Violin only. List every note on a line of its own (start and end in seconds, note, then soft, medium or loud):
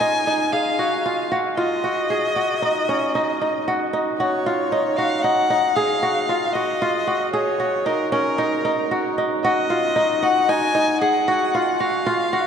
0.00 0.54 G#5 medium
0.53 1.31 F5 medium
1.57 3.63 D#5 medium
4.19 4.98 C#5 medium
4.97 5.24 F5 medium
5.22 5.77 F#5 medium
5.75 6.54 F5 medium
6.53 7.32 D#5 medium
7.33 7.87 C#5 medium
7.86 8.12 A#4 medium
8.12 9.13 A#4 medium
9.44 10.25 D#5 medium
10.23 10.51 F#5 medium
10.49 11.01 G#5 medium
11.01 11.81 F#5 medium
11.80 12.47 F5 medium